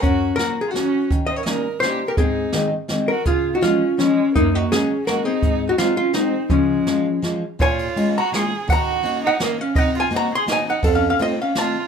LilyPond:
<<
  \new Staff \with { instrumentName = "Hollow-body jazz guitar" } { \time 3/4 \key des \major \tempo 4 = 167 << { bes'4 bes'8. aes'16 ges'4 | r8 ees''16 des''16 ees''4 c''8. bes'16 | aes'4. r4 bes'8 | aes'8. ges'16 f'4 des'4 |
ees'8 ges'8 aes'4 bes'8 aes'8~ | aes'8. ges'16 f'8 f'8 ees'4 | des'2 r4 | \key bes \minor aes''4. bes''8 c'''4 |
bes''4. ges''8 ees''8 f''8 | ges''8 aes''8 bes''8 c'''8 aes''8 ges''8 | \tuplet 3/2 { f''8 f''8 f''8 } ees''8 f''8 a''8. r16 | } \\ { des'4. r4. | r2. | c'4. r4. | f'4. r4. |
bes4. r4 c'8~ | c'4 r2 | f2 r4 | des''4. r4. |
ges''4. r4. | ees''4. r4. | a'4. r4. | } >> }
  \new Staff \with { instrumentName = "Violin" } { \time 3/4 \key des \major ges'4 ges'8. f'16 des'4 | r8 c''16 bes'16 bes'4 g'8. g'16 | ees'4. r4 ges'8 | f'8. ees'16 des'4 aes4 |
bes8 ees'8 des'4 ges'8 ees'8~ | ees'8. ees'16 c'8 des'8 c'4 | aes2 r4 | \key bes \minor f'4. ges'8 aes'4 |
ges'4. ees'8 bes8 des'8 | ees'8 f'8 ges'8 aes'8 ees'8 ees'8 | \tuplet 3/2 { c'8 des'8 des'8 } c'8 des'8 f'8. r16 | }
  \new Staff \with { instrumentName = "Steel-string acoustic guitar" } { \time 3/4 \key des \major ges,4 <ges bes des' ges'>8 r8 <ges bes des' ges'>8 r8 | ees4 <g bes des' ees'>8 r8 <g bes des' ees'>8 r8 | aes,4 <ees aes c' ees'>8 r8 <ees aes c' ees'>8 r8 | des4 <f aes des' ees'>8 r8 <f aes des' ees'>8 r8 |
ges,4 <ges aes bes des'>8 r8 <ges aes bes des'>8 r8 | aes,4 <ges aes c' ees'>8 r8 <ges aes c' ees'>8 r8 | des4 <f aes des' f'>8 r8 <f aes des' f'>8 r8 | \key bes \minor bes,4 <aes bes des' f'>8 r8 <aes bes des' f'>8 r8 |
ees4 <bes des' ees' ges'>8 r8 <bes des' ees' ges'>8 r8 | c4 <bes c' ees' ges'>8 r8 <bes c' ees' ges'>8 r8 | f,4 <a c' ees' f'>8 r8 <a c' ees' f'>8 r8 | }
  \new DrumStaff \with { instrumentName = "Drums" } \drummode { \time 3/4 <hh bd>4 <hh sn>4 <hh sn>4 | <hh bd>4 <hh sn>4 <hh sn>4 | <hh bd>4 <hh sn>4 <hh sn>4 | <hh bd>4 <hh sn>4 <hh sn>4 |
<hh bd>4 <hh sn>4 <hh sn>4 | <hh bd>4 <hh sn>4 <hh sn>4 | <hh bd>4 <hh sn>4 <hh sn>4 | <bd cymr>8 cymr8 cymr4 <cymr sn>4 |
<bd cymr>4 cymr4 <cymr sn>4 | <bd cymr>8 cymr8 cymr4 <cymr sn>4 | <bd cymr>4 cymr4 <cymr sn>4 | }
>>